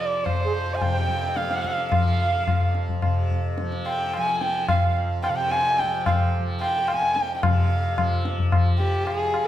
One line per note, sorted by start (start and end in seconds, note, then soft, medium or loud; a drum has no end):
0.00 0.29 F2 medium
0.00 0.84 C3 medium
0.00 1.40 F3 medium
0.00 0.26 D5 medium
0.00 0.41 D5 medium
0.25 0.76 C5 medium
0.25 tabla na medium
0.25 tabla ge medium
0.29 2.50 F2 medium
0.40 0.46 C5 medium
0.46 0.52 G#4 medium
0.52 0.96 C5 medium
0.75 0.83 G#5 medium
0.81 3.06 C3 medium
0.81 1.37 G5 medium
0.81 tabla na medium
0.81 tabla ge medium
0.94 1.52 G5 medium
1.09 tabla ge medium
1.36 1.95 F3 medium
1.36 1.92 F5 medium
1.36 tabla te medium
1.50 2.04 F5 medium
1.50 tabla te medium
1.64 tabla ke medium
1.78 tabla te medium
1.92 3.62 F3 medium
1.92 2.71 F5 medium
1.92 tabla na medium
1.92 tabla ge medium
2.05 2.85 F5 medium
2.48 4.72 F2 medium
2.48 tabla na medium
2.48 tabla ge medium
2.75 tabla te medium
2.89 tabla ge medium
3.02 5.28 C3 medium
3.02 tabla na medium
3.02 tabla ge medium
3.30 tabla ge medium
3.58 tabla te medium
3.62 4.17 F3 medium
3.72 tabla te medium
3.86 4.16 G5 medium
3.86 tabla na medium
4.00 4.28 G5 medium
4.13 5.84 F3 medium
4.13 4.34 G#5 loud
4.13 tabla na medium
4.28 4.84 G#5 medium
4.34 4.42 G#5 medium
4.41 4.68 G5 medium
4.41 tabla te medium
4.68 4.94 F5 medium
4.68 tabla na medium
4.68 tabla ge medium
4.73 6.93 F2 medium
4.83 5.08 F5 medium
5.23 5.31 G5 medium
5.23 tabla na medium
5.29 7.43 C3 medium
5.29 5.37 F5 medium
5.35 5.52 G5 medium
5.35 5.87 G5 medium
5.51 5.80 G#5 loud
5.51 tabla na medium
5.79 6.06 G5 medium
5.79 tabla te medium
5.84 6.39 F3 medium
5.84 5.93 G#5 soft
5.93 6.44 G5 medium
6.06 6.32 F5 medium
6.06 tabla na medium
6.06 tabla ge medium
6.39 7.98 F3 medium
6.61 6.89 G5 medium
6.61 tabla na medium
6.75 7.03 G5 medium
6.87 7.17 G#5 medium
6.87 tabla na medium
6.93 9.06 F2 medium
7.02 7.30 G#5 medium
7.15 7.36 G5 medium
7.15 tabla te medium
7.30 7.49 G5 medium
7.36 7.44 G5 medium
7.43 9.48 C3 medium
7.43 8.25 F5 medium
7.43 tabla na loud
7.43 tabla ge loud
7.98 8.52 F3 medium
7.98 tabla na medium
7.98 tabla ge medium
8.25 tabla te medium
8.39 tabla ge medium
8.52 9.48 F3 medium
8.52 tabla na medium
8.52 tabla ge medium
8.79 9.07 G4 medium
8.79 tabla te medium
9.05 9.48 F2 medium
9.05 9.48 G#4 medium
9.05 tabla na medium
9.34 tabla na medium